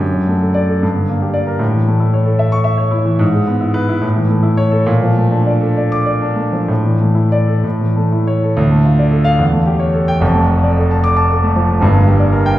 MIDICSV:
0, 0, Header, 1, 2, 480
1, 0, Start_track
1, 0, Key_signature, -1, "minor"
1, 0, Tempo, 545455
1, 10, Time_signature, 6, 3, 24, 8
1, 970, Tempo, 522193
1, 2410, Tempo, 548948
1, 3850, Tempo, 583090
1, 5290, Tempo, 627615
1, 7210, Tempo, 550459
1, 9130, Tempo, 520833
1, 10800, End_track
2, 0, Start_track
2, 0, Title_t, "Grand piano"
2, 0, Program_c, 0, 0
2, 0, Control_c, 0, 64, 127
2, 0, Note_on_c, 0, 42, 61
2, 26, Control_c, 0, 64, 0
2, 120, Note_on_c, 0, 54, 40
2, 157, Control_c, 0, 64, 127
2, 246, Note_on_c, 0, 57, 44
2, 315, Note_off_c, 0, 54, 0
2, 363, Note_on_c, 0, 69, 42
2, 439, Note_off_c, 0, 57, 0
2, 479, Note_on_c, 0, 74, 68
2, 561, Note_off_c, 0, 69, 0
2, 600, Note_on_c, 0, 69, 51
2, 680, Note_off_c, 0, 74, 0
2, 699, Note_off_c, 0, 42, 0
2, 727, Note_on_c, 0, 43, 61
2, 728, Note_off_c, 0, 69, 0
2, 752, Control_c, 0, 64, 0
2, 840, Note_on_c, 0, 50, 49
2, 904, Control_c, 0, 64, 127
2, 959, Note_on_c, 0, 58, 49
2, 1034, Note_off_c, 0, 50, 0
2, 1077, Note_on_c, 0, 67, 48
2, 1152, Note_off_c, 0, 58, 0
2, 1185, Note_on_c, 0, 74, 63
2, 1267, Note_off_c, 0, 67, 0
2, 1308, Note_on_c, 0, 70, 54
2, 1380, Note_off_c, 0, 74, 0
2, 1412, Note_off_c, 0, 43, 0
2, 1420, Note_on_c, 0, 45, 71
2, 1431, Note_off_c, 0, 70, 0
2, 1453, Control_c, 0, 64, 0
2, 1541, Note_on_c, 0, 52, 46
2, 1577, Control_c, 0, 64, 127
2, 1681, Note_on_c, 0, 57, 47
2, 1745, Note_off_c, 0, 52, 0
2, 1795, Note_on_c, 0, 64, 51
2, 1877, Note_off_c, 0, 57, 0
2, 1920, Note_on_c, 0, 73, 53
2, 1996, Note_off_c, 0, 64, 0
2, 2028, Note_on_c, 0, 69, 51
2, 2119, Note_off_c, 0, 73, 0
2, 2155, Note_on_c, 0, 76, 59
2, 2232, Note_off_c, 0, 69, 0
2, 2274, Note_on_c, 0, 85, 80
2, 2355, Note_off_c, 0, 76, 0
2, 2386, Note_on_c, 0, 76, 63
2, 2471, Note_off_c, 0, 85, 0
2, 2504, Note_on_c, 0, 73, 60
2, 2583, Note_off_c, 0, 76, 0
2, 2621, Note_on_c, 0, 64, 59
2, 2703, Note_off_c, 0, 73, 0
2, 2744, Note_on_c, 0, 52, 53
2, 2824, Note_off_c, 0, 64, 0
2, 2840, Note_off_c, 0, 45, 0
2, 2866, Note_on_c, 0, 44, 81
2, 2874, Note_off_c, 0, 52, 0
2, 2898, Control_c, 0, 64, 0
2, 2989, Note_on_c, 0, 56, 54
2, 3050, Control_c, 0, 64, 127
2, 3109, Note_on_c, 0, 59, 59
2, 3190, Note_off_c, 0, 56, 0
2, 3230, Note_on_c, 0, 64, 54
2, 3310, Note_off_c, 0, 59, 0
2, 3348, Note_on_c, 0, 71, 79
2, 3431, Note_off_c, 0, 64, 0
2, 3477, Note_on_c, 0, 64, 58
2, 3550, Note_off_c, 0, 71, 0
2, 3577, Note_off_c, 0, 44, 0
2, 3587, Note_on_c, 0, 45, 67
2, 3603, Note_off_c, 0, 64, 0
2, 3626, Control_c, 0, 64, 0
2, 3714, Note_on_c, 0, 52, 55
2, 3764, Control_c, 0, 64, 127
2, 3830, Note_on_c, 0, 57, 57
2, 3912, Note_off_c, 0, 52, 0
2, 3943, Note_on_c, 0, 64, 60
2, 4026, Note_off_c, 0, 57, 0
2, 4062, Note_on_c, 0, 73, 79
2, 4140, Note_off_c, 0, 64, 0
2, 4178, Note_on_c, 0, 69, 63
2, 4260, Note_off_c, 0, 73, 0
2, 4286, Note_off_c, 0, 45, 0
2, 4302, Note_on_c, 0, 46, 83
2, 4307, Note_off_c, 0, 69, 0
2, 4334, Control_c, 0, 64, 0
2, 4434, Note_on_c, 0, 53, 54
2, 4496, Control_c, 0, 64, 127
2, 4556, Note_on_c, 0, 57, 54
2, 4629, Note_off_c, 0, 53, 0
2, 4670, Note_on_c, 0, 62, 55
2, 4751, Note_off_c, 0, 57, 0
2, 4796, Note_on_c, 0, 74, 58
2, 4869, Note_off_c, 0, 62, 0
2, 4916, Note_on_c, 0, 69, 55
2, 4993, Note_off_c, 0, 74, 0
2, 5050, Note_on_c, 0, 74, 55
2, 5115, Note_off_c, 0, 69, 0
2, 5170, Note_on_c, 0, 86, 76
2, 5244, Note_off_c, 0, 74, 0
2, 5286, Note_on_c, 0, 74, 58
2, 5362, Note_off_c, 0, 86, 0
2, 5408, Note_on_c, 0, 62, 57
2, 5477, Note_off_c, 0, 74, 0
2, 5513, Note_on_c, 0, 57, 50
2, 5598, Note_off_c, 0, 62, 0
2, 5643, Note_on_c, 0, 53, 50
2, 5713, Note_off_c, 0, 57, 0
2, 5730, Note_off_c, 0, 46, 0
2, 5761, Note_on_c, 0, 45, 68
2, 5767, Note_off_c, 0, 53, 0
2, 5785, Control_c, 0, 64, 0
2, 5888, Note_on_c, 0, 52, 51
2, 5953, Control_c, 0, 64, 127
2, 6008, Note_on_c, 0, 57, 44
2, 6084, Note_off_c, 0, 52, 0
2, 6118, Note_on_c, 0, 64, 46
2, 6204, Note_off_c, 0, 57, 0
2, 6250, Note_on_c, 0, 74, 69
2, 6320, Note_off_c, 0, 64, 0
2, 6369, Note_on_c, 0, 69, 52
2, 6445, Note_off_c, 0, 74, 0
2, 6470, Note_off_c, 0, 45, 0
2, 6493, Note_off_c, 0, 69, 0
2, 6494, Note_on_c, 0, 45, 58
2, 6511, Control_c, 0, 64, 0
2, 6623, Note_on_c, 0, 52, 43
2, 6632, Control_c, 0, 64, 127
2, 6740, Note_on_c, 0, 57, 49
2, 6814, Note_off_c, 0, 52, 0
2, 6861, Note_on_c, 0, 64, 46
2, 6934, Note_off_c, 0, 57, 0
2, 6979, Note_on_c, 0, 73, 63
2, 7055, Note_off_c, 0, 64, 0
2, 7102, Note_on_c, 0, 69, 50
2, 7166, Note_off_c, 0, 73, 0
2, 7188, Note_off_c, 0, 45, 0
2, 7204, Note_on_c, 0, 38, 84
2, 7212, Note_off_c, 0, 69, 0
2, 7228, Control_c, 0, 64, 0
2, 7328, Note_on_c, 0, 57, 52
2, 7389, Control_c, 0, 64, 127
2, 7449, Note_on_c, 0, 65, 55
2, 7523, Note_off_c, 0, 57, 0
2, 7570, Note_on_c, 0, 74, 59
2, 7644, Note_off_c, 0, 65, 0
2, 7677, Note_on_c, 0, 69, 59
2, 7765, Note_off_c, 0, 74, 0
2, 7794, Note_on_c, 0, 77, 80
2, 7879, Note_off_c, 0, 69, 0
2, 7910, Note_off_c, 0, 38, 0
2, 7919, Note_on_c, 0, 40, 70
2, 7925, Note_off_c, 0, 77, 0
2, 7953, Control_c, 0, 64, 0
2, 8038, Note_on_c, 0, 57, 52
2, 8074, Control_c, 0, 64, 127
2, 8156, Note_on_c, 0, 67, 55
2, 8239, Note_off_c, 0, 57, 0
2, 8273, Note_on_c, 0, 73, 61
2, 8357, Note_off_c, 0, 67, 0
2, 8397, Note_on_c, 0, 69, 54
2, 8476, Note_off_c, 0, 73, 0
2, 8523, Note_on_c, 0, 79, 86
2, 8597, Note_off_c, 0, 69, 0
2, 8624, Note_off_c, 0, 40, 0
2, 8633, Note_on_c, 0, 29, 72
2, 8640, Note_on_c, 0, 41, 80
2, 8649, Note_off_c, 0, 79, 0
2, 8670, Control_c, 0, 64, 0
2, 8752, Note_on_c, 0, 57, 60
2, 8806, Control_c, 0, 64, 127
2, 8892, Note_on_c, 0, 69, 54
2, 8954, Note_off_c, 0, 57, 0
2, 9007, Note_on_c, 0, 74, 58
2, 9083, Note_off_c, 0, 69, 0
2, 9128, Note_on_c, 0, 69, 58
2, 9203, Note_off_c, 0, 74, 0
2, 9252, Note_on_c, 0, 81, 61
2, 9327, Note_off_c, 0, 69, 0
2, 9370, Note_on_c, 0, 86, 85
2, 9449, Note_off_c, 0, 81, 0
2, 9488, Note_on_c, 0, 81, 67
2, 9568, Note_off_c, 0, 86, 0
2, 9618, Note_on_c, 0, 69, 61
2, 9685, Note_off_c, 0, 81, 0
2, 9731, Note_on_c, 0, 57, 63
2, 9808, Note_off_c, 0, 69, 0
2, 9852, Note_on_c, 0, 53, 60
2, 9923, Note_off_c, 0, 57, 0
2, 9974, Note_on_c, 0, 57, 56
2, 10042, Note_off_c, 0, 53, 0
2, 10043, Note_off_c, 0, 29, 0
2, 10047, Note_off_c, 0, 41, 0
2, 10079, Note_on_c, 0, 31, 79
2, 10091, Note_off_c, 0, 57, 0
2, 10092, Note_on_c, 0, 43, 84
2, 10106, Control_c, 0, 64, 0
2, 10198, Note_on_c, 0, 58, 57
2, 10231, Control_c, 0, 64, 127
2, 10319, Note_on_c, 0, 67, 57
2, 10392, Note_off_c, 0, 58, 0
2, 10436, Note_on_c, 0, 74, 55
2, 10514, Note_off_c, 0, 67, 0
2, 10555, Note_on_c, 0, 70, 62
2, 10635, Note_off_c, 0, 74, 0
2, 10680, Note_on_c, 0, 79, 87
2, 10756, Note_off_c, 0, 70, 0
2, 10783, Note_off_c, 0, 31, 0
2, 10790, Note_off_c, 0, 43, 0
2, 10800, Note_off_c, 0, 79, 0
2, 10800, End_track
0, 0, End_of_file